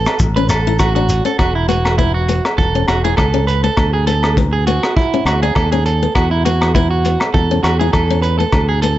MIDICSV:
0, 0, Header, 1, 6, 480
1, 0, Start_track
1, 0, Tempo, 594648
1, 1123, Time_signature, 4, 2, 24, 8
1, 7252, End_track
2, 0, Start_track
2, 0, Title_t, "Clean electric guitar"
2, 0, Program_c, 0, 27
2, 0, Note_on_c, 0, 69, 72
2, 151, Note_off_c, 0, 69, 0
2, 292, Note_on_c, 0, 71, 59
2, 396, Note_off_c, 0, 71, 0
2, 399, Note_on_c, 0, 69, 66
2, 629, Note_off_c, 0, 69, 0
2, 640, Note_on_c, 0, 66, 74
2, 759, Note_off_c, 0, 66, 0
2, 768, Note_on_c, 0, 66, 65
2, 999, Note_off_c, 0, 66, 0
2, 1015, Note_on_c, 0, 69, 70
2, 1119, Note_off_c, 0, 69, 0
2, 1122, Note_on_c, 0, 66, 82
2, 1247, Note_off_c, 0, 66, 0
2, 1254, Note_on_c, 0, 64, 60
2, 1358, Note_off_c, 0, 64, 0
2, 1362, Note_on_c, 0, 66, 67
2, 1591, Note_off_c, 0, 66, 0
2, 1598, Note_on_c, 0, 64, 69
2, 1725, Note_off_c, 0, 64, 0
2, 1730, Note_on_c, 0, 66, 56
2, 1961, Note_off_c, 0, 66, 0
2, 2083, Note_on_c, 0, 69, 74
2, 2312, Note_off_c, 0, 69, 0
2, 2325, Note_on_c, 0, 66, 61
2, 2449, Note_off_c, 0, 66, 0
2, 2456, Note_on_c, 0, 68, 61
2, 2556, Note_off_c, 0, 68, 0
2, 2559, Note_on_c, 0, 69, 72
2, 2790, Note_off_c, 0, 69, 0
2, 2803, Note_on_c, 0, 71, 69
2, 2928, Note_off_c, 0, 71, 0
2, 2936, Note_on_c, 0, 69, 66
2, 3164, Note_off_c, 0, 69, 0
2, 3176, Note_on_c, 0, 68, 59
2, 3280, Note_off_c, 0, 68, 0
2, 3285, Note_on_c, 0, 69, 68
2, 3513, Note_off_c, 0, 69, 0
2, 3654, Note_on_c, 0, 68, 57
2, 3759, Note_off_c, 0, 68, 0
2, 3768, Note_on_c, 0, 66, 68
2, 3995, Note_off_c, 0, 66, 0
2, 4008, Note_on_c, 0, 64, 72
2, 4235, Note_off_c, 0, 64, 0
2, 4250, Note_on_c, 0, 66, 69
2, 4372, Note_off_c, 0, 66, 0
2, 4379, Note_on_c, 0, 68, 63
2, 4482, Note_off_c, 0, 68, 0
2, 4486, Note_on_c, 0, 69, 72
2, 4610, Note_off_c, 0, 69, 0
2, 4617, Note_on_c, 0, 68, 64
2, 4720, Note_off_c, 0, 68, 0
2, 4728, Note_on_c, 0, 69, 69
2, 4955, Note_off_c, 0, 69, 0
2, 4968, Note_on_c, 0, 66, 74
2, 5091, Note_off_c, 0, 66, 0
2, 5095, Note_on_c, 0, 64, 56
2, 5199, Note_off_c, 0, 64, 0
2, 5209, Note_on_c, 0, 66, 70
2, 5435, Note_off_c, 0, 66, 0
2, 5445, Note_on_c, 0, 64, 70
2, 5569, Note_off_c, 0, 64, 0
2, 5574, Note_on_c, 0, 66, 62
2, 5803, Note_off_c, 0, 66, 0
2, 5924, Note_on_c, 0, 69, 76
2, 6152, Note_off_c, 0, 69, 0
2, 6161, Note_on_c, 0, 66, 65
2, 6286, Note_off_c, 0, 66, 0
2, 6292, Note_on_c, 0, 68, 64
2, 6397, Note_off_c, 0, 68, 0
2, 6401, Note_on_c, 0, 69, 74
2, 6630, Note_off_c, 0, 69, 0
2, 6637, Note_on_c, 0, 71, 64
2, 6764, Note_off_c, 0, 71, 0
2, 6769, Note_on_c, 0, 69, 70
2, 6999, Note_off_c, 0, 69, 0
2, 7012, Note_on_c, 0, 68, 60
2, 7116, Note_off_c, 0, 68, 0
2, 7120, Note_on_c, 0, 69, 70
2, 7252, Note_off_c, 0, 69, 0
2, 7252, End_track
3, 0, Start_track
3, 0, Title_t, "Steel-string acoustic guitar"
3, 0, Program_c, 1, 25
3, 0, Note_on_c, 1, 59, 72
3, 112, Note_off_c, 1, 59, 0
3, 296, Note_on_c, 1, 61, 66
3, 487, Note_off_c, 1, 61, 0
3, 541, Note_on_c, 1, 64, 70
3, 730, Note_off_c, 1, 64, 0
3, 774, Note_on_c, 1, 62, 69
3, 966, Note_off_c, 1, 62, 0
3, 1008, Note_on_c, 1, 61, 66
3, 1098, Note_off_c, 1, 61, 0
3, 1360, Note_on_c, 1, 59, 68
3, 1554, Note_off_c, 1, 59, 0
3, 1603, Note_on_c, 1, 59, 69
3, 1796, Note_off_c, 1, 59, 0
3, 1848, Note_on_c, 1, 59, 67
3, 2038, Note_off_c, 1, 59, 0
3, 2221, Note_on_c, 1, 61, 57
3, 2411, Note_off_c, 1, 61, 0
3, 2459, Note_on_c, 1, 64, 67
3, 2649, Note_off_c, 1, 64, 0
3, 2694, Note_on_c, 1, 61, 67
3, 2886, Note_off_c, 1, 61, 0
3, 2936, Note_on_c, 1, 59, 61
3, 3023, Note_off_c, 1, 59, 0
3, 3287, Note_on_c, 1, 59, 70
3, 3478, Note_off_c, 1, 59, 0
3, 3532, Note_on_c, 1, 59, 72
3, 3722, Note_off_c, 1, 59, 0
3, 3775, Note_on_c, 1, 59, 68
3, 3963, Note_off_c, 1, 59, 0
3, 4146, Note_on_c, 1, 61, 61
3, 4334, Note_off_c, 1, 61, 0
3, 4382, Note_on_c, 1, 62, 65
3, 4571, Note_off_c, 1, 62, 0
3, 4620, Note_on_c, 1, 61, 67
3, 4810, Note_off_c, 1, 61, 0
3, 4864, Note_on_c, 1, 59, 62
3, 4948, Note_off_c, 1, 59, 0
3, 5212, Note_on_c, 1, 59, 69
3, 5401, Note_off_c, 1, 59, 0
3, 5453, Note_on_c, 1, 59, 72
3, 5642, Note_off_c, 1, 59, 0
3, 5695, Note_on_c, 1, 59, 67
3, 5883, Note_off_c, 1, 59, 0
3, 6062, Note_on_c, 1, 61, 63
3, 6251, Note_off_c, 1, 61, 0
3, 6302, Note_on_c, 1, 64, 67
3, 6491, Note_off_c, 1, 64, 0
3, 6542, Note_on_c, 1, 61, 68
3, 6730, Note_off_c, 1, 61, 0
3, 6781, Note_on_c, 1, 59, 62
3, 6865, Note_off_c, 1, 59, 0
3, 7130, Note_on_c, 1, 59, 70
3, 7252, Note_off_c, 1, 59, 0
3, 7252, End_track
4, 0, Start_track
4, 0, Title_t, "Fingered electric bass"
4, 0, Program_c, 2, 33
4, 160, Note_on_c, 2, 33, 99
4, 971, Note_off_c, 2, 33, 0
4, 1123, Note_on_c, 2, 28, 79
4, 1933, Note_off_c, 2, 28, 0
4, 2085, Note_on_c, 2, 28, 93
4, 2287, Note_off_c, 2, 28, 0
4, 2327, Note_on_c, 2, 28, 76
4, 2528, Note_off_c, 2, 28, 0
4, 2569, Note_on_c, 2, 37, 79
4, 2972, Note_off_c, 2, 37, 0
4, 3048, Note_on_c, 2, 38, 84
4, 3857, Note_off_c, 2, 38, 0
4, 4240, Note_on_c, 2, 38, 75
4, 4445, Note_off_c, 2, 38, 0
4, 4488, Note_on_c, 2, 39, 85
4, 4892, Note_off_c, 2, 39, 0
4, 4970, Note_on_c, 2, 40, 85
4, 5777, Note_off_c, 2, 40, 0
4, 5928, Note_on_c, 2, 40, 92
4, 6129, Note_off_c, 2, 40, 0
4, 6164, Note_on_c, 2, 40, 73
4, 6366, Note_off_c, 2, 40, 0
4, 6406, Note_on_c, 2, 40, 81
4, 6809, Note_off_c, 2, 40, 0
4, 6883, Note_on_c, 2, 38, 86
4, 7252, Note_off_c, 2, 38, 0
4, 7252, End_track
5, 0, Start_track
5, 0, Title_t, "Shekere"
5, 42, Note_on_c, 9, 82, 26
5, 122, Note_off_c, 9, 82, 0
5, 155, Note_on_c, 9, 82, 66
5, 236, Note_off_c, 9, 82, 0
5, 396, Note_on_c, 9, 82, 87
5, 476, Note_off_c, 9, 82, 0
5, 637, Note_on_c, 9, 82, 62
5, 718, Note_off_c, 9, 82, 0
5, 880, Note_on_c, 9, 82, 96
5, 961, Note_off_c, 9, 82, 0
5, 1013, Note_on_c, 9, 82, 26
5, 1093, Note_off_c, 9, 82, 0
5, 7252, End_track
6, 0, Start_track
6, 0, Title_t, "Drums"
6, 52, Note_on_c, 9, 37, 67
6, 57, Note_on_c, 9, 68, 59
6, 133, Note_off_c, 9, 37, 0
6, 138, Note_off_c, 9, 68, 0
6, 160, Note_on_c, 9, 36, 84
6, 241, Note_off_c, 9, 36, 0
6, 404, Note_on_c, 9, 37, 59
6, 404, Note_on_c, 9, 42, 47
6, 407, Note_on_c, 9, 68, 63
6, 485, Note_off_c, 9, 37, 0
6, 485, Note_off_c, 9, 42, 0
6, 488, Note_off_c, 9, 68, 0
6, 641, Note_on_c, 9, 68, 58
6, 642, Note_on_c, 9, 37, 64
6, 643, Note_on_c, 9, 36, 83
6, 722, Note_off_c, 9, 37, 0
6, 722, Note_off_c, 9, 68, 0
6, 724, Note_off_c, 9, 36, 0
6, 885, Note_on_c, 9, 42, 49
6, 966, Note_off_c, 9, 42, 0
6, 1120, Note_on_c, 9, 68, 58
6, 1122, Note_on_c, 9, 37, 65
6, 1123, Note_on_c, 9, 36, 81
6, 1201, Note_off_c, 9, 68, 0
6, 1203, Note_off_c, 9, 37, 0
6, 1204, Note_off_c, 9, 36, 0
6, 1369, Note_on_c, 9, 42, 44
6, 1450, Note_off_c, 9, 42, 0
6, 1493, Note_on_c, 9, 68, 55
6, 1498, Note_on_c, 9, 37, 59
6, 1574, Note_off_c, 9, 68, 0
6, 1579, Note_off_c, 9, 37, 0
6, 1604, Note_on_c, 9, 36, 77
6, 1685, Note_off_c, 9, 36, 0
6, 1844, Note_on_c, 9, 42, 42
6, 1925, Note_off_c, 9, 42, 0
6, 1978, Note_on_c, 9, 37, 59
6, 1979, Note_on_c, 9, 68, 54
6, 2059, Note_off_c, 9, 37, 0
6, 2060, Note_off_c, 9, 68, 0
6, 2085, Note_on_c, 9, 36, 80
6, 2166, Note_off_c, 9, 36, 0
6, 2322, Note_on_c, 9, 68, 59
6, 2328, Note_on_c, 9, 37, 60
6, 2328, Note_on_c, 9, 42, 42
6, 2403, Note_off_c, 9, 68, 0
6, 2409, Note_off_c, 9, 37, 0
6, 2409, Note_off_c, 9, 42, 0
6, 2560, Note_on_c, 9, 68, 56
6, 2567, Note_on_c, 9, 36, 86
6, 2570, Note_on_c, 9, 37, 65
6, 2640, Note_off_c, 9, 68, 0
6, 2648, Note_off_c, 9, 36, 0
6, 2650, Note_off_c, 9, 37, 0
6, 2810, Note_on_c, 9, 42, 43
6, 2891, Note_off_c, 9, 42, 0
6, 3041, Note_on_c, 9, 68, 58
6, 3046, Note_on_c, 9, 37, 63
6, 3047, Note_on_c, 9, 36, 77
6, 3122, Note_off_c, 9, 68, 0
6, 3126, Note_off_c, 9, 37, 0
6, 3127, Note_off_c, 9, 36, 0
6, 3288, Note_on_c, 9, 42, 46
6, 3369, Note_off_c, 9, 42, 0
6, 3414, Note_on_c, 9, 68, 55
6, 3421, Note_on_c, 9, 37, 61
6, 3494, Note_off_c, 9, 68, 0
6, 3502, Note_off_c, 9, 37, 0
6, 3528, Note_on_c, 9, 36, 79
6, 3609, Note_off_c, 9, 36, 0
6, 3770, Note_on_c, 9, 42, 49
6, 3850, Note_off_c, 9, 42, 0
6, 3899, Note_on_c, 9, 68, 52
6, 3902, Note_on_c, 9, 37, 61
6, 3980, Note_off_c, 9, 68, 0
6, 3983, Note_off_c, 9, 37, 0
6, 4009, Note_on_c, 9, 36, 81
6, 4089, Note_off_c, 9, 36, 0
6, 4246, Note_on_c, 9, 68, 56
6, 4250, Note_on_c, 9, 37, 61
6, 4250, Note_on_c, 9, 42, 46
6, 4327, Note_off_c, 9, 68, 0
6, 4331, Note_off_c, 9, 37, 0
6, 4331, Note_off_c, 9, 42, 0
6, 4482, Note_on_c, 9, 68, 57
6, 4489, Note_on_c, 9, 36, 82
6, 4490, Note_on_c, 9, 37, 65
6, 4562, Note_off_c, 9, 68, 0
6, 4569, Note_off_c, 9, 36, 0
6, 4570, Note_off_c, 9, 37, 0
6, 4728, Note_on_c, 9, 42, 46
6, 4809, Note_off_c, 9, 42, 0
6, 4965, Note_on_c, 9, 68, 56
6, 4968, Note_on_c, 9, 36, 83
6, 4968, Note_on_c, 9, 37, 68
6, 5045, Note_off_c, 9, 68, 0
6, 5049, Note_off_c, 9, 36, 0
6, 5049, Note_off_c, 9, 37, 0
6, 5212, Note_on_c, 9, 42, 44
6, 5292, Note_off_c, 9, 42, 0
6, 5338, Note_on_c, 9, 68, 57
6, 5342, Note_on_c, 9, 37, 62
6, 5419, Note_off_c, 9, 68, 0
6, 5423, Note_off_c, 9, 37, 0
6, 5448, Note_on_c, 9, 36, 83
6, 5528, Note_off_c, 9, 36, 0
6, 5688, Note_on_c, 9, 42, 44
6, 5769, Note_off_c, 9, 42, 0
6, 5813, Note_on_c, 9, 68, 54
6, 5819, Note_on_c, 9, 37, 63
6, 5893, Note_off_c, 9, 68, 0
6, 5899, Note_off_c, 9, 37, 0
6, 5927, Note_on_c, 9, 36, 79
6, 6008, Note_off_c, 9, 36, 0
6, 6167, Note_on_c, 9, 68, 55
6, 6168, Note_on_c, 9, 37, 59
6, 6168, Note_on_c, 9, 42, 43
6, 6247, Note_off_c, 9, 68, 0
6, 6249, Note_off_c, 9, 37, 0
6, 6249, Note_off_c, 9, 42, 0
6, 6402, Note_on_c, 9, 68, 57
6, 6404, Note_on_c, 9, 37, 64
6, 6406, Note_on_c, 9, 36, 82
6, 6483, Note_off_c, 9, 68, 0
6, 6485, Note_off_c, 9, 37, 0
6, 6487, Note_off_c, 9, 36, 0
6, 6644, Note_on_c, 9, 42, 44
6, 6725, Note_off_c, 9, 42, 0
6, 6881, Note_on_c, 9, 37, 66
6, 6881, Note_on_c, 9, 68, 59
6, 6884, Note_on_c, 9, 36, 82
6, 6962, Note_off_c, 9, 37, 0
6, 6962, Note_off_c, 9, 68, 0
6, 6964, Note_off_c, 9, 36, 0
6, 7122, Note_on_c, 9, 42, 45
6, 7202, Note_off_c, 9, 42, 0
6, 7252, End_track
0, 0, End_of_file